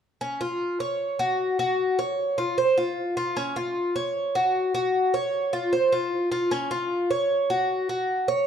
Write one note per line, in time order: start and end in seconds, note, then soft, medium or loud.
0.21 0.40 C#4 medium
0.41 0.79 F4 medium
0.80 1.18 C#5 medium
1.19 1.58 F#4 medium
1.59 1.97 F#4 medium
1.99 2.37 C#5 medium
2.38 2.57 F4 medium
2.58 2.77 C5 medium
2.78 3.16 F4 medium
3.17 3.36 F4 medium
3.37 3.56 C#4 medium
3.56 3.94 F4 medium
3.96 4.34 C#5 medium
4.35 4.73 F#4 medium
4.75 5.13 F#4 medium
5.14 5.52 C#5 medium
5.53 5.72 F4 medium
5.73 5.92 C5 medium
5.92 6.31 F4 medium
6.32 6.51 F4 medium
6.51 6.70 C#4 medium
6.71 7.09 F4 medium
7.11 7.49 C#5 medium
7.50 7.88 F#4 medium
7.89 8.27 F#4 medium
8.28 8.47 C#5 medium